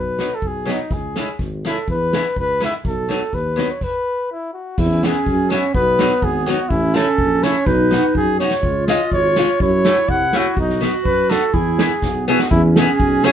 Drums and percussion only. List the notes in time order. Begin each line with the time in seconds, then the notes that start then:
0.19 snare
0.42 kick
0.68 snare
0.91 kick
1.16 snare
1.39 kick, snare
1.65 snare
1.88 kick
2.13 snare
2.36 kick
2.62 snare
2.85 kick
3.10 snare
3.33 kick
3.58 snare
3.81 kick, crash
4.78 kick, crash
5.03 snare
5.26 kick
5.51 snare
5.75 kick
5.99 snare
6.22 kick
6.47 snare
6.70 kick
6.95 snare
7.18 kick
7.43 snare
7.67 kick
7.92 snare
8.15 kick
8.40 snare
8.51 snare
8.63 kick
8.88 snare
9.12 kick
9.36 snare
9.60 kick
9.85 snare
10.09 kick
10.33 snare
10.57 kick
10.70 snare
10.82 snare
11.05 kick
11.31 snare
11.54 kick
11.79 snare
12.02 kick, snare
12.28 snare
12.39 snare
12.51 kick
12.76 snare, hi-hat pedal
13.00 kick
13.24 snare, hi-hat pedal